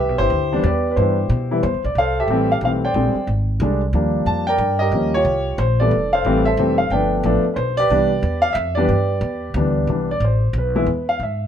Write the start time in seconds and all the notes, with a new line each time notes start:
Already playing: G4 B4 E5
0.08 B1
0.18 G1 E4 G4 C5
0.30 D2
0.52 E3 G3 B3 D4
0.63 E2 G4 B4 D5
0.91 B4
0.96 G2 E3 G3 B3 D4 E4 G4 C5
1.29 B2
1.51 E3 G3 B3 E4
1.63 E2 C5
1.74 C2
1.84 B1 D5
1.95 C2 A4 C5 F5
2.20 G4 A4 E5
2.28 A1 E3 G3 A3 C4
2.52 F5
2.61 B1 E3 G3 A3 C4
2.65 F5
2.85 C5 D5 G5
2.94 A#1 D3 G3 G#3 C4
3.15 muted upright bass stroke
3.27 G#1
3.60 C2 D3 G3 G#3 D4
3.93 D#2 F3 G3 A#3 D4
4.26 F2 A5
4.47 A#4 D5 G5
4.58 G2
4.79 G4 A#4 D#5
4.92 D#2 F3 G3 A#3 C#4
5.14 F4 G4 C#5
5.25 C2
5.58 A#1 C5
5.80 E3 G3 A3 B3 A4 D5
5.91 F1
6.13 A4 C5 F5
6.25 A1 E3 G3 A3 C4
6.45 A4 C5 E5
6.57 F1 E3 G3 A3 C4
6.78 F5
6.90 G1 F3 A3 B3 D4 B4 D5 G5
7.23 A1 F3 A3 B3 D4
7.45 muted upright bass stroke
7.54 B1 B4 C5
7.77 G4 B4 D5
7.90 C2 E3 G3 B3 D4
8.23 E2
8.42 F5
8.53 F2 E5
8.75 E3 G3 B3 D4 G4 D5
8.79 B4
8.88 G2
9.21 E2
9.54 D2 E3 G3 B3 D4
9.87 C2 E3 G3 B3 D4
10.11 D5
10.20 A1
10.24 C5
10.53 B1
10.58 B4
10.75 E3 G#3 B3 E4
10.86 E2
11.09 F5
11.20 G#2 E5